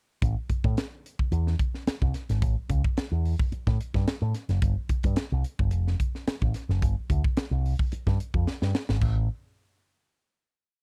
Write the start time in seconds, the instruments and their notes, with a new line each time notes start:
0.22 picked electric bass A1, kick, closed hi-hat
0.49 muted picked electric bass stroke, kick, closed hi-hat
0.64 picked electric bass A2, kick
0.77 snare, closed hi-hat
1.06 closed hi-hat
1.19 kick
1.32 picked electric bass E2, closed hi-hat
1.47 snare
1.59 kick, closed hi-hat
1.74 snare
1.87 muted picked electric bass stroke, snare, closed hi-hat
2.02 picked electric bass C2, kick
2.14 snare, closed hi-hat
2.29 picked electric bass G#1, snare, closed hi-hat
2.42 picked electric bass A1, kick, closed hi-hat
2.69 picked electric bass C#2, kick, closed hi-hat
2.84 kick
2.97 muted picked electric bass stroke, snare, closed hi-hat
3.12 picked electric bass E2
3.25 open hi-hat
3.39 kick
3.52 muted picked electric bass stroke, closed hi-hat
3.67 picked electric bass A2, kick, snare
3.81 closed hi-hat
3.94 picked electric bass G2, kick, snare
4.08 snare, closed hi-hat
4.22 picked electric bass A2
4.35 snare, closed hi-hat
4.49 picked electric bass F#1, snare, closed hi-hat
4.62 picked electric bass G1, kick, closed hi-hat
4.89 muted picked electric bass stroke, kick, closed hi-hat
5.03 picked electric bass G2, kick, closed hi-hat
5.16 snare, closed hi-hat
5.32 picked electric bass C2
5.44 closed hi-hat
5.59 picked electric bass G1, kick
5.71 picked electric bass F1, closed hi-hat
5.87 snare
6.00 kick, closed hi-hat
6.15 snare
6.27 muted picked electric bass stroke, snare, closed hi-hat
6.42 picked electric bass A1, kick
6.54 snare, closed hi-hat
6.69 picked electric bass F#1, snare
6.82 picked electric bass G1, kick, closed hi-hat
7.10 picked electric bass D2, kick, closed hi-hat
7.24 kick
7.37 muted picked electric bass stroke, snare, closed hi-hat
7.51 picked electric bass C2
7.66 open hi-hat
7.79 kick
7.92 muted picked electric bass stroke, closed hi-hat
8.07 picked electric bass G2, kick, snare
8.20 closed hi-hat
8.34 picked electric bass F2, kick
8.47 snare
8.62 picked electric bass G2, snare
8.75 snare
8.89 picked electric bass G#1, snare
9.02 picked electric bass A1, kick, crash